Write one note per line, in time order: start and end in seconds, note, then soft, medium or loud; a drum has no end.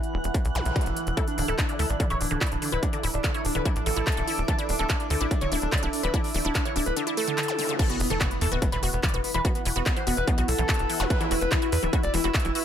0.00 7.83 E3 medium
0.00 2.59 E4 medium
0.00 7.83 E4 medium
0.00 2.74 B4 loud
0.00 2.82 F#5 medium
0.00 1.85 F#6 medium
0.00 closed hi-hat soft
0.14 0.20 E1 medium
0.24 0.30 E1 medium
0.24 closed hi-hat soft
0.34 kick loud
0.34 closed hi-hat medium
0.45 0.51 B1 medium
0.45 closed hi-hat medium
0.55 0.61 B1 medium
0.55 closed hi-hat soft
0.55 zap medium
0.65 0.71 B1 medium
0.65 closed hi-hat soft
0.76 kick loud
0.76 closed hi-hat soft
0.81 closed hi-hat medium
0.86 0.92 E1 medium
0.86 closed hi-hat soft
0.96 closed hi-hat medium
1.07 1.13 E1 medium
1.07 closed hi-hat soft
1.17 9.43 D4 medium
1.17 1.24 E4 medium
1.17 1.24 A4 loud
1.17 kick loud
1.17 closed hi-hat medium
1.28 1.34 D4 medium
1.28 closed hi-hat medium
1.38 1.44 D1 medium
1.38 1.42 D3 medium
1.38 1.44 D4 medium
1.38 8.64 A4 medium
1.38 9.13 E5 medium
1.38 open hi-hat loud
1.48 1.54 D1 medium
1.48 1.55 E4 medium
1.48 1.55 A4 medium
1.48 closed hi-hat soft
1.59 1.65 D4 medium
1.59 kick loud
1.59 clap loud
1.59 closed hi-hat medium
1.69 1.73 D3 medium
1.69 1.76 D4 medium
1.69 closed hi-hat soft
1.79 1.85 D2 medium
1.79 1.86 E4 medium
1.79 1.86 A4 loud
1.79 open hi-hat loud
1.84 9.33 D6 medium
1.90 1.95 A1 medium
1.90 1.96 D4 medium
1.90 closed hi-hat soft
2.00 2.04 D3 medium
2.00 2.07 D4 medium
2.00 kick loud
2.00 closed hi-hat medium
2.10 2.16 D1 medium
2.10 2.17 E4 medium
2.10 2.17 C#5 medium
2.10 closed hi-hat soft
2.21 2.26 D1 medium
2.21 2.27 D4 medium
2.21 open hi-hat loud
2.31 2.37 D1 medium
2.31 2.35 D3 medium
2.31 2.38 D4 medium
2.31 closed hi-hat medium
2.41 2.48 E4 medium
2.41 2.48 D5 medium
2.41 kick loud
2.41 clap loud
2.41 closed hi-hat soft
2.46 closed hi-hat medium
2.52 2.58 D1 medium
2.52 2.58 D4 medium
2.52 closed hi-hat soft
2.62 2.66 D3 medium
2.62 2.69 D4 medium
2.62 open hi-hat loud
2.72 2.78 D1 medium
2.72 2.79 E4 medium
2.72 2.79 B4 medium
2.72 closed hi-hat soft
2.83 2.89 D4 medium
2.83 kick loud
2.83 closed hi-hat medium
2.93 2.97 D3 medium
2.93 3.00 D4 medium
2.93 closed hi-hat medium
3.03 3.09 D1 medium
3.03 3.10 E4 medium
3.03 open hi-hat loud
3.14 3.20 D1 medium
3.14 3.20 D4 medium
3.14 closed hi-hat medium
3.24 3.28 D3 medium
3.24 3.31 D4 medium
3.24 kick loud
3.24 clap loud
3.24 closed hi-hat medium
3.34 3.41 E4 medium
3.34 3.41 C#5 medium
3.34 closed hi-hat soft
3.45 3.51 D1 medium
3.45 3.51 D4 medium
3.45 open hi-hat loud
3.55 3.61 D1 medium
3.55 3.59 D3 medium
3.55 3.62 B4 loud
3.55 closed hi-hat medium
3.65 3.72 D4 medium
3.65 3.72 E4 medium
3.65 kick loud
3.65 closed hi-hat medium
3.76 3.82 A1 medium
3.76 3.82 D4 medium
3.76 closed hi-hat medium
3.86 3.92 A1 medium
3.86 3.90 D3 medium
3.86 4.40 A4 loud
3.86 open hi-hat loud
3.96 4.02 A1 medium
3.96 4.03 E4 medium
3.96 closed hi-hat soft
4.07 kick loud
4.07 clap loud
4.07 closed hi-hat soft
4.12 closed hi-hat medium
4.17 4.23 D1 medium
4.17 4.21 D3 medium
4.17 closed hi-hat medium
4.28 4.34 E4 medium
4.28 open hi-hat loud
4.38 4.44 D1 medium
4.38 closed hi-hat medium
4.48 4.52 D3 medium
4.48 4.55 A4 loud
4.48 kick loud
4.48 closed hi-hat medium
4.59 4.65 D4 medium
4.59 4.65 E4 medium
4.59 closed hi-hat medium
4.69 4.75 D1 medium
4.69 4.76 D4 medium
4.69 open hi-hat loud
4.79 4.85 D1 medium
4.79 4.83 D3 medium
4.79 4.86 A4 medium
4.79 closed hi-hat medium
4.90 4.96 D4 medium
4.90 4.96 E4 medium
4.90 kick loud
4.90 clap loud
4.90 closed hi-hat medium
5.00 5.07 D4 medium
5.00 closed hi-hat medium
5.10 5.16 D2 medium
5.10 5.14 D3 medium
5.10 5.17 A4 medium
5.10 open hi-hat loud
5.21 5.26 A1 medium
5.21 5.27 D4 medium
5.21 5.27 E4 medium
5.21 closed hi-hat medium
5.31 5.38 D4 medium
5.31 kick loud
5.31 closed hi-hat medium
5.41 5.47 D1 medium
5.41 5.45 D3 medium
5.41 5.48 C#5 loud
5.41 closed hi-hat medium
5.52 5.58 D1 medium
5.52 5.58 D4 medium
5.52 5.58 E4 medium
5.52 open hi-hat loud
5.62 5.68 D1 medium
5.62 5.69 D4 medium
5.62 closed hi-hat medium
5.72 5.76 D3 medium
5.72 5.79 D5 medium
5.72 kick loud
5.72 clap loud
5.72 closed hi-hat soft
5.78 closed hi-hat medium
5.83 5.89 D1 medium
5.83 5.89 D4 medium
5.83 5.89 E4 medium
5.83 closed hi-hat medium
5.93 6.00 D4 medium
5.93 open hi-hat loud
6.03 6.09 D1 medium
6.03 6.07 D3 medium
6.03 6.10 B4 medium
6.03 closed hi-hat medium
6.14 6.20 D4 medium
6.14 6.20 E4 medium
6.14 kick loud
6.14 closed hi-hat medium
6.24 6.31 D4 medium
6.24 open hi-hat medium
6.34 6.40 D1 medium
6.34 6.38 D3 medium
6.34 open hi-hat loud
6.45 6.51 D1 medium
6.45 6.51 D4 medium
6.45 6.51 E4 medium
6.55 6.62 D4 medium
6.55 kick loud
6.55 clap loud
6.55 closed hi-hat medium
6.65 6.69 D3 medium
6.65 6.72 C#5 medium
6.65 closed hi-hat medium
6.76 6.82 D1 loud
6.76 6.82 D4 medium
6.76 6.82 E4 medium
6.76 open hi-hat loud
6.86 6.92 D1 medium
6.86 6.93 B4 loud
6.86 closed hi-hat medium
6.96 7.00 D3 medium
6.96 7.03 D4 medium
6.96 closed hi-hat medium
7.07 7.13 D4 medium
7.07 7.13 E4 medium
7.07 closed hi-hat medium
7.17 7.24 A3 medium
7.17 7.71 A4 loud
7.17 open hi-hat loud
7.28 7.34 D3 medium
7.28 closed hi-hat medium
7.38 7.48 D3 medium
7.38 clap loud
7.38 closed hi-hat medium
7.43 closed hi-hat medium
7.48 closed hi-hat medium
7.48 zap medium
7.59 7.68 D3 medium
7.59 open hi-hat loud
7.69 7.76 C#3 medium
7.69 closed hi-hat medium
7.79 7.83 E3 medium
7.79 12.65 E4 medium
7.79 7.86 A4 loud
7.79 kick loud
7.79 closed hi-hat medium
7.79 crash loud
7.79 impact medium
7.90 7.96 B3 medium
7.90 7.96 F#4 medium
7.90 closed hi-hat medium
7.95 12.65 B4 medium
7.95 12.02 F#5 medium
8.00 8.06 E1 loud
8.00 8.07 B3 medium
8.00 open hi-hat loud
8.10 8.16 E1 medium
8.10 8.14 E3 medium
8.10 8.17 A4 medium
8.10 closed hi-hat medium
8.21 8.27 B3 medium
8.21 8.27 F#4 medium
8.21 kick loud
8.21 clap loud
8.21 closed hi-hat medium
8.31 8.38 B3 medium
8.31 closed hi-hat medium
8.41 8.47 E2 loud
8.41 8.45 E3 medium
8.41 8.48 A4 loud
8.41 open hi-hat loud
8.52 8.58 D1 medium
8.52 8.58 B3 medium
8.52 8.58 F#4 medium
8.52 12.65 E6 medium
8.52 closed hi-hat medium
8.62 8.69 B3 medium
8.62 kick loud
8.62 closed hi-hat medium
8.72 8.78 E1 medium
8.72 8.76 E3 medium
8.72 8.79 B4 medium
8.72 closed hi-hat medium
8.83 8.89 E1 medium
8.83 8.89 B3 medium
8.83 8.89 F#4 medium
8.83 open hi-hat loud
8.93 8.99 E1 medium
8.93 9.00 B3 medium
8.93 closed hi-hat medium
9.03 9.07 E3 medium
9.03 9.10 D5 medium
9.03 kick loud
9.03 clap loud
9.03 closed hi-hat medium
9.09 closed hi-hat medium
9.14 9.20 E1 medium
9.14 9.20 B3 medium
9.14 9.20 F#4 medium
9.14 closed hi-hat medium
9.24 9.31 B3 medium
9.24 open hi-hat loud
9.34 9.40 E1 medium
9.34 9.38 E3 medium
9.34 9.41 B4 medium
9.34 closed hi-hat medium
9.45 9.51 B3 medium
9.45 9.51 F#4 medium
9.45 kick loud
9.45 closed hi-hat medium
9.55 9.62 B3 medium
9.55 closed hi-hat medium
9.65 9.71 E1 medium
9.65 9.69 E3 medium
9.65 open hi-hat loud
9.76 9.82 E1 medium
9.76 9.82 B3 medium
9.76 9.82 F#4 medium
9.76 closed hi-hat medium
9.86 9.93 B3 medium
9.86 kick loud
9.86 clap loud
9.86 closed hi-hat medium
9.96 10.00 E3 medium
9.96 10.03 C5 medium
9.96 closed hi-hat medium
10.07 10.13 E1 loud
10.07 10.13 B3 medium
10.07 10.13 F#4 medium
10.07 open hi-hat loud
10.17 10.23 E1 medium
10.17 10.24 B4 loud
10.17 closed hi-hat medium
10.28 10.31 E3 medium
10.28 10.34 B3 medium
10.28 kick loud
10.28 closed hi-hat medium
10.38 10.44 B1 medium
10.38 10.44 B3 medium
10.38 10.44 F#4 medium
10.38 closed hi-hat medium
10.48 10.54 B1 loud
10.48 11.02 A4 loud
10.48 open hi-hat loud
10.59 10.64 B1 medium
10.59 10.63 E3 medium
10.59 closed hi-hat medium
10.69 10.76 F#4 medium
10.69 kick loud
10.69 clap loud
10.69 closed hi-hat medium
10.74 closed hi-hat medium
10.79 10.85 E1 medium
10.79 closed hi-hat medium
10.90 10.94 E3 medium
10.90 open hi-hat loud
11.00 11.06 E1 medium
11.00 11.07 F#4 medium
11.00 zap medium
11.10 11.17 B4 loud
11.10 kick loud
11.10 closed hi-hat medium
11.21 11.25 E3 medium
11.21 11.27 E4 medium
11.21 closed hi-hat medium
11.31 11.37 E1 medium
11.31 11.38 E4 medium
11.31 11.38 F#4 medium
11.31 open hi-hat loud
11.41 11.47 E1 medium
11.41 11.48 B4 loud
11.41 closed hi-hat soft
11.52 11.56 E3 medium
11.52 11.58 E4 medium
11.52 kick loud
11.52 clap loud
11.52 closed hi-hat medium
11.62 11.69 E4 medium
11.62 11.69 F#4 medium
11.62 closed hi-hat soft
11.72 11.78 E2 loud
11.72 11.79 B4 medium
11.72 open hi-hat loud
11.83 11.89 D1 medium
11.83 11.87 E3 medium
11.83 11.89 E4 medium
11.83 closed hi-hat medium
11.89 12.00 E4 medium
11.89 12.00 F#4 medium
11.89 12.65 G5 medium
11.89 kick loud
11.89 closed hi-hat medium
12.03 12.09 E1 medium
12.03 12.10 D5 loud
12.03 closed hi-hat medium
12.14 12.20 E1 medium
12.14 12.18 E3 medium
12.14 12.20 E4 medium
12.14 open hi-hat loud
12.24 12.30 E1 medium
12.24 12.31 E4 medium
12.24 12.31 F#4 medium
12.24 closed hi-hat medium
12.34 12.41 E5 loud
12.34 kick loud
12.34 clap loud
12.34 closed hi-hat soft
12.40 closed hi-hat medium
12.45 12.51 E1 medium
12.45 12.49 E3 medium
12.45 12.51 E4 medium
12.45 closed hi-hat medium
12.55 12.62 E4 medium
12.55 12.62 F#4 medium
12.55 open hi-hat loud